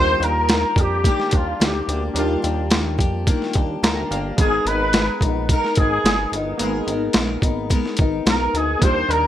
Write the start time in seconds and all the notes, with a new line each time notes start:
Already playing: D#2 D#3 G3 A#3 D4 F4 G4 C5
0.20 D#2 D4 G4 A#4, closed hi-hat
0.24 A#3
0.48 D#3 A#3 D4, snare, closed hi-hat
0.53 G4
0.76 F2 D4 G4, kick, closed hi-hat
0.80 A#3 G4
1.04 D#3 A#3 D4 G4, kick, closed hi-hat
1.20 snare
1.31 D#2 D4 G4, kick, closed hi-hat
1.35 A#3 F4
1.60 D2 D#3 A#3 D4 G4, snare, closed hi-hat
1.88 D2 A#3 D4 G4, closed hi-hat
2.14 D#2 D#3 G3 A#3 D4, closed hi-hat
2.18 F4 G4
2.42 D#2 D4 G4, closed hi-hat
2.46 A#3
2.70 D#3 A#3 D4, snare, closed hi-hat
2.75 G4
2.98 F2 A#3 D4 G4, kick, closed hi-hat
3.27 D#3 A#3 D4 G4, kick, closed hi-hat
3.42 snare
3.53 D#2 D4 G4, kick, closed hi-hat
3.58 A#3
3.83 D2 D#3 A#3 D4 G4 A#5, snare, closed hi-hat
4.10 G1 D4 G4 F5, closed hi-hat
4.15 A#3
4.37 G#1 G#3 B3 D#4 G#4, kick, closed hi-hat
4.41 B3 D#4 G#4 A#4
4.65 G#1 D#4 A#4 B4, closed hi-hat
4.71 B3
4.93 G#3 B3, snare, closed hi-hat
4.98 D#4 A#4
5.21 A#1 D#4 A#4, kick, closed hi-hat
5.26 B3
5.49 G#3 B3 D#4 A#4, kick, closed hi-hat
5.53 A#4
5.64 snare
5.75 G#1 D#4 G#4 A#4, kick, closed hi-hat
5.81 B3
6.04 G1 G#3 B3 D#4 A#4, snare, closed hi-hat
6.32 G1 D#4 A#4, closed hi-hat
6.37 B3
6.58 G#1 G#3 A#3 B3 D#4, closed hi-hat
6.62 D#4 G#4 A#4
6.87 G#1 D#4 A#4, closed hi-hat
6.92 B3
7.13 A#1 G#3 B3, snare, closed hi-hat
7.19 D#4 A#4
7.42 G#1 D#4 A#4, kick, closed hi-hat
7.46 B3
7.70 G#3 B3 D#4 A#4, kick, closed hi-hat
7.85 snare
7.97 G#1 D#4 A#4, kick, closed hi-hat
8.01 B3
8.26 B1 G#3 B3 D#4 A#4, snare, closed hi-hat
8.54 D2 B3 D#4 G#4 A#4, closed hi-hat
8.79 D#2 D#3 A#3 D4 F4 C5, kick, closed hi-hat
8.83 G3 A#3 D4 G4
9.09 D#2 G3 A#3 D4 A#4, closed hi-hat